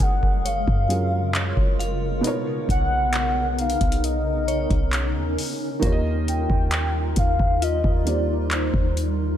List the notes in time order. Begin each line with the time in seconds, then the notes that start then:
Already playing: C#3 F3 F#3 G#3 C#4 G#4 A#4
0.00 F#1 F#5, kick, closed hi-hat
0.23 kick
0.45 F4 C#5 F5, closed hi-hat
0.68 F#2, kick
0.88 F#3 C#4 F4 G#4 A#4, closed hi-hat
1.35 C#5, clap, closed hi-hat
1.57 F#1, kick
1.79 F5, closed hi-hat
2.21 B2 B3 D#4, closed hi-hat
2.26 A#4 C#5
2.69 B1 F#5, kick, closed hi-hat
3.13 clap, closed hi-hat
3.59 F5, closed hi-hat
3.70 closed hi-hat
3.81 B1, kick, closed hi-hat
3.92 closed hi-hat
4.03 C#4 D#5, closed hi-hat
4.48 C#5, closed hi-hat
4.71 B1, kick, closed hi-hat
4.93 clap, closed hi-hat
5.16 D#2
5.38 open hi-hat
5.79 D#2 D#3 G3 A#3 D#4 F4 A#4, kick, closed hi-hat
5.84 G4 C#5
5.92 D#5
6.28 G5, closed hi-hat
6.50 D#2, kick
6.71 clap, closed hi-hat
7.16 D#2 F5, kick, closed hi-hat
7.40 D#2, kick
7.62 F4 D#5, closed hi-hat
7.84 D#2, kick
8.05 D#3 A#3 F4 G4 C5 D5, closed hi-hat
8.14 D5
8.51 C5, clap, closed hi-hat
8.74 D#2, kick
8.97 closed hi-hat